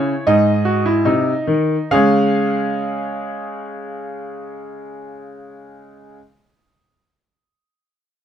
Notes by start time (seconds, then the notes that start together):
Already playing: C#3 E4 C#5
0.27 G#2 D#4 D#5
0.65 F#4
0.86 E4
1.05 C3 D#4
1.47 D#3
1.91 C#3 G#3 C#4 G#4 F5